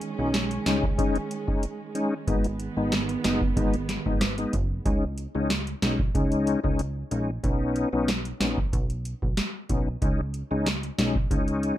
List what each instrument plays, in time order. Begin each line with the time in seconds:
Already playing: string section D#3 G#3 C#4
0.01 closed hi-hat
0.18 analog synth bass B1, tonewheel organ G#3 C#4 D#4
0.34 snare, closed hi-hat
0.51 closed hi-hat
0.66 analog synth bass C#2, tonewheel organ G#3 C#4 D#4, snare, closed hi-hat
0.83 kick
0.98 tonewheel organ G#3 C#4 D#4, kick, closed hi-hat
1.16 closed hi-hat
1.31 closed hi-hat
1.47 tonewheel organ G#3 C#4 D#4, kick
1.63 closed hi-hat
1.95 tonewheel organ G#3 C#4 D#4, closed hi-hat
2.27 analog synth bass G#1, string section D#3 B3, tonewheel organ G#3 B3 D#4, kick, closed hi-hat
2.44 closed hi-hat
2.60 closed hi-hat
2.77 analog synth bass G#1, tonewheel organ G#3 B3 D#4
2.92 snare, closed hi-hat
3.09 closed hi-hat
3.24 analog synth bass F#1, tonewheel organ G#3 B3 D#4, snare, closed hi-hat
3.41 kick
3.56 analog synth bass G#1, tonewheel organ G#3 B3 D#4, kick, closed hi-hat
3.74 closed hi-hat
3.89 snare, closed hi-hat
4.06 analog synth bass G#1, tonewheel organ G#3 B3 D#4, kick
4.21 cross-stick, snare, closed hi-hat
4.38 tonewheel organ G#3 B3 D#4, closed hi-hat
4.53 analog synth bass F#1, kick, closed hi-hat
4.85 analog synth bass C#2, tonewheel organ G#3 C#4 D#4, kick, closed hi-hat
5.18 closed hi-hat
5.35 analog synth bass C#2, tonewheel organ G#3 C#4 D#4
5.50 snare, closed hi-hat
5.67 closed hi-hat
5.82 analog synth bass B1, tonewheel organ G#3 C#4 D#4, snare, closed hi-hat
5.99 kick
6.14 analog synth bass C#2, tonewheel organ G#3 C#4 D#4, kick, closed hi-hat
6.32 closed hi-hat
6.47 closed hi-hat
6.64 analog synth bass C#2, tonewheel organ G#3 C#4 D#4, kick
6.79 closed hi-hat
7.11 analog synth bass A#1, tonewheel organ G#3 C#4 D#4, closed hi-hat
7.43 analog synth bass B1, tonewheel organ B3 C#4 D#4, kick, closed hi-hat
7.76 closed hi-hat
7.93 analog synth bass B1, tonewheel organ B3 C#4 D#4
8.08 snare, closed hi-hat
8.25 closed hi-hat
8.40 analog synth bass A#1, tonewheel organ B3 C#4 D#4, snare, closed hi-hat
8.57 kick
8.73 analog synth bass B1, kick, closed hi-hat
8.90 closed hi-hat
9.05 closed hi-hat
9.22 analog synth bass B1, kick
9.37 snare, closed hi-hat
9.69 analog synth bass B1, tonewheel organ B3 C#4 D#4, kick, closed hi-hat
10.02 analog synth bass C#2, tonewheel organ G#3 C#4 D#4, kick, closed hi-hat
10.34 closed hi-hat
10.51 analog synth bass C#2, tonewheel organ G#3 C#4 D#4
10.66 snare, closed hi-hat
10.83 closed hi-hat
10.98 analog synth bass B1, tonewheel organ G#3 C#4 D#4, snare, closed hi-hat
11.16 kick
11.30 analog synth bass C#2, tonewheel organ G#3 C#4 D#4, kick, closed hi-hat
11.48 closed hi-hat
11.63 closed hi-hat